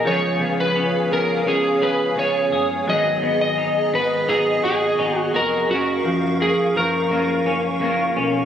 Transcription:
Already playing: B3 D#4 G#4 G#5
0.03 C#2 C#3 F3 G#3 C#5 F5
0.07 B3 F4 G#4 C#5
0.40 C#2 B3
0.60 B4
0.76 C#4
1.10 C#2 B3 A#4
1.45 C#2 G#3 B3 C#4 F4 G#4
1.50 G#4
1.82 C#2 G#4 B4
2.16 C#2 G#3 B3 C#4 F4 C#5
2.21 G#4
2.52 F#1 G#4
2.85 G#1 G#2 D#3 F#3 G#4 D#5
2.90 B3 D#4 G#4 D#5
3.22 G#1 B3
3.41 D#5
3.58 D#4
3.93 G#1 B3 B4
4.27 G#1 F#3 B3 D#4 G#4
4.32 G#4
4.64 G#1 F#4 G#4
4.98 G#1 F#3 B3 D#4
5.03 G#4
5.19 F#4
5.34 F1 F#4 A#4
5.67 F#1 F#3 C#4 F#4 A#4 F5 C#6
5.75 A#4
6.05 F#1 F3
6.40 A#3 G#4
6.75 F#1 F3 A#4
7.09 F#1 F#3 A#3 C#4 F4
7.14 A#4
7.45 F#1 C#4
7.80 F#1 F#3 A#3 C#4 F4
7.85 A#4
8.16 B1 C#4

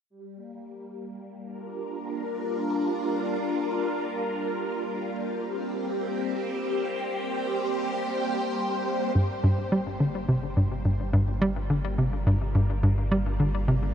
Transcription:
0.10 G3
0.35 A#3
1.38 D4
1.43 A#4
1.47 F4
5.20 G4
5.45 C4
6.18 C5
9.15 G1 G2
9.44 G2
9.72 G3
10.00 D3
10.28 C3
10.49 D4
10.57 G2
10.85 G2
11.07 F4
11.13 G2
11.42 G3
11.70 D3
11.74 A#4
11.98 C3
12.27 G2
12.55 G2
12.83 G2
13.12 G3
13.40 D3
13.68 C3

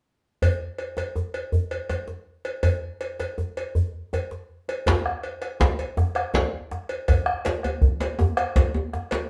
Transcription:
0.42 cowbell, djembe tone, djembe bass
0.78 cowbell
0.97 cowbell, djembe slap
1.16 djembe tone
1.34 cowbell
1.52 djembe bass
1.71 cowbell
1.90 cowbell, djembe tone
2.08 djembe slap
2.45 cowbell, djembe slap
2.63 cowbell, djembe tone, djembe bass
3.01 cowbell
3.20 cowbell, djembe slap
3.38 djembe tone
3.57 cowbell
3.75 djembe bass
4.13 cowbell, djembe slap, djembe tone
4.31 djembe slap
4.68 cowbell, djembe slap
4.86 bombo rim, bombo low, cowbell, djembe slap, djembe tone, djembe bass
5.06 bombo rim
5.23 cowbell
5.42 bombo rim, cowbell
5.60 bombo low, djembe slap, djembe tone
5.79 cowbell
5.97 bombo rim, djembe slap, djembe bass
6.15 bombo rim, cowbell
6.34 bombo low, cowbell, djembe slap, djembe tone
6.53 djembe slap
6.71 bombo rim, djembe slap
6.89 cowbell
7.08 bombo rim, bombo low, cowbell, djembe tone, djembe bass
7.26 bombo rim
7.45 cowbell, djembe slap
7.63 bombo rim, cowbell, djembe tone
7.81 bombo low, djembe tone
8.00 cowbell, djembe slap
8.19 bombo rim, djembe slap, djembe tone, djembe bass
8.37 bombo rim, cowbell
8.56 bombo low, cowbell, djembe slap, djembe tone
8.74 djembe slap, djembe tone
8.93 bombo rim, djembe slap
9.11 cowbell, djembe slap

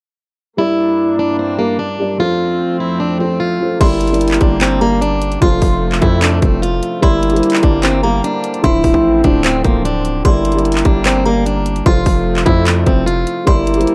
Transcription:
0.57 G2 G3 A#3 D4 E4 G4 A#4 D5
1.19 D4
1.39 C4
1.58 G3 A#3 G4 A#4 D5
1.79 D4
1.98 G3 G4 A#4 D5
2.18 F2 F3 A3 C4 F4 A4 C5
2.80 E4
3.00 D4
3.18 F3 C4 F4 A4 C5
3.40 F4
3.59 F3 F4 A4 C5
3.80 G1 D3 G3 A#3 E4 G4 A#4 D5 C6, kick, closed hi-hat, crash
4.01 closed hi-hat, open hi-hat
4.08 G3 G4, closed hi-hat
4.12 A#4 D5, closed hi-hat
4.21 closed hi-hat
4.28 clap, closed hi-hat
4.34 closed hi-hat
4.40 G1 G3 D4 G4 A#4 D5, kick, closed hi-hat
4.61 C4, clap, closed hi-hat
4.80 G3 A#3 G4 A#4 D5 A#5
5.01 D4, closed hi-hat
5.22 closed hi-hat
5.32 closed hi-hat
5.41 F1 C3 F3 A3 F4 A4 C5 C6, kick, closed hi-hat
5.62 F1, kick, open hi-hat
5.92 clap
6.00 F2 F3 E4 F4 A4 C5, kick, closed hi-hat
6.22 D4, clap, closed hi-hat
6.42 F1 C4, kick, closed hi-hat
6.62 F4, closed hi-hat
6.83 closed hi-hat
7.01 G1 D3 G3 A#3 E4 G4 A#4 D5 C6, kick, closed hi-hat
7.23 closed hi-hat, open hi-hat
7.30 G3 G4, closed hi-hat
7.34 A#4 C5, closed hi-hat
7.43 closed hi-hat
7.50 clap, closed hi-hat
7.57 closed hi-hat
7.61 G1 G3 D4 G4 D5, kick, closed hi-hat
7.83 C4, clap, closed hi-hat
8.02 G3 A#3 G4 A#4 F5 A#5
8.24 D4, closed hi-hat
8.44 closed hi-hat
8.54 closed hi-hat
8.62 D1 D3 F3 A3 C4 D4 E4 C5 C6, kick, closed hi-hat
8.84 D1, kick, open hi-hat
8.94 A1, kick
9.23 D1 D3 D4 F4 C5, kick, closed hi-hat
9.44 C4, clap, closed hi-hat
9.64 D1 A#3, kick, closed hi-hat
9.85 D4, closed hi-hat
10.05 closed hi-hat
10.24 G1 G3 A#3 E4 G4 A#4 D5 C6, kick, closed hi-hat
10.45 closed hi-hat, open hi-hat
10.52 G3 G4, closed hi-hat
10.56 A#4 D5, closed hi-hat
10.65 closed hi-hat
10.72 clap, closed hi-hat
10.79 closed hi-hat
10.84 G1 G3 D4 G4 D5, kick, closed hi-hat
11.05 C4, clap, closed hi-hat
11.24 G3 A#3 G4 A#4 D5 A#5
11.46 D4, closed hi-hat
11.66 closed hi-hat
11.76 closed hi-hat
11.85 F1 C3 F3 A3 F4 A4 C5 C6, kick, closed hi-hat
12.06 F1, kick, open hi-hat
12.36 clap
12.44 F2 F3 E4 F4 A4 C5, kick, closed hi-hat
12.66 D4, clap, closed hi-hat
12.86 F1 C4, kick, closed hi-hat
13.06 F4, closed hi-hat
13.27 closed hi-hat
13.45 G1 D3 G3 A#3 E4 G4 A#4 D5 C6, kick, closed hi-hat
13.67 closed hi-hat, open hi-hat
13.74 G3 G4, closed hi-hat
13.78 A#4 C5, closed hi-hat
13.87 closed hi-hat

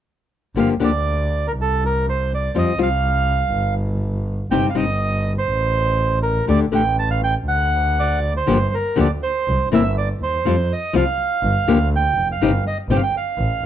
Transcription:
0.55 G1 D3 F3 A#3 D4 G4 F5
0.80 D2 D3 F3 A#3 D4 G4
0.84 D5
1.48 A#4
1.56 C2
1.61 A4
1.86 A#4
2.09 C5
2.35 D5
2.54 F2 F3 G3 C4 F4 D#5
2.78 C2 F3 G3 C4 F4
2.82 F5
3.52 G1
4.50 G1 C3 G3 C4 D#4 G4 G5
4.70 F5
4.74 G1 C3 G3 C4 D#4 G4 D#5
5.38 C5
5.49 A1
6.23 A#4
6.47 D2 D3 A3 D4 G4 D5
6.71 A1 D3 A3 D4 G4
6.75 G5
6.99 A5
7.11 F5
7.24 G5
7.45 D2 F#5
8.00 D5
8.37 C5
8.46 G1 D3 F3 A#3 D4 G4
8.74 A#4
8.96 D2 D3 F3 A#3 D4 G4
9.00 D5
9.23 C5
9.48 C2
9.71 G1 C3 E3 A#3 C4 E4 E5
9.98 D5
10.21 D#2 C5
10.44 F2 F3 G3 C4 F4
10.72 D#5
10.93 C2 F3 G3 C4 F4
10.98 F5
11.43 G1
11.68 D2 D3 F3 A#3 D4 G4
11.96 G5
12.17 F1
12.32 F5
12.41 G1 C3 G3 C4 D#4 G4
12.67 D#5
12.89 G1 C3 G3 C4 D#4 G4 G5
12.97 F5
13.03 G5
13.17 F5
13.38 A1

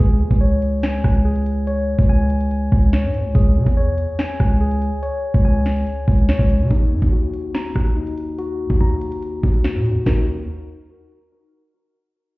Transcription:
0.00 C#2 G#4
0.20 E2
0.31 C#2, kick, closed hi-hat
0.41 C#5
0.62 closed hi-hat
0.83 G#5, snare, closed hi-hat
1.04 C#2, kick, cross-stick
1.15 closed hi-hat
1.25 G#4
1.36 closed hi-hat
1.46 closed hi-hat
1.67 C#5, closed hi-hat
1.99 C#2, kick
2.09 C#2 G#5
2.30 closed hi-hat
2.41 closed hi-hat
2.51 closed hi-hat
2.72 C#2, kick
2.83 closed hi-hat
2.93 C#5, snare
3.04 G#2
3.14 closed hi-hat
3.19 C#2
3.35 C#2 G#4, kick, closed hi-hat
3.56 C#3
3.66 E2, kick, closed hi-hat
3.77 C#5
3.98 closed hi-hat
4.19 G#5, snare, closed hi-hat
4.40 C#2, kick, cross-stick
4.50 closed hi-hat
4.61 G#4
4.71 closed hi-hat
4.82 closed hi-hat
5.03 C#5, closed hi-hat
5.34 C#2, kick
5.45 C#2 G#5
5.66 snare, closed hi-hat
5.76 closed hi-hat
5.87 closed hi-hat
6.08 C#2, kick
6.18 closed hi-hat
6.29 E2 C#5, snare
6.39 C#2, kick
6.50 closed hi-hat
6.60 C#3
6.71 D#2 D#4, kick, closed hi-hat
6.92 F#2
7.02 D#2, kick, closed hi-hat
7.12 F#4
7.34 closed hi-hat
7.55 A#5, snare, closed hi-hat
7.76 D#2, kick, cross-stick
7.86 closed hi-hat
7.96 D#4
8.07 closed hi-hat
8.18 closed hi-hat
8.39 F#4, closed hi-hat
8.70 D#2, kick
8.80 D#2 A#5
9.01 closed hi-hat
9.12 closed hi-hat
9.22 closed hi-hat
9.43 D#2, kick
9.54 closed hi-hat
9.64 F#4, snare
9.75 A#2
9.85 closed hi-hat
9.91 D#2
10.06 D#2 D#4 F#4 A#4, kick, snare

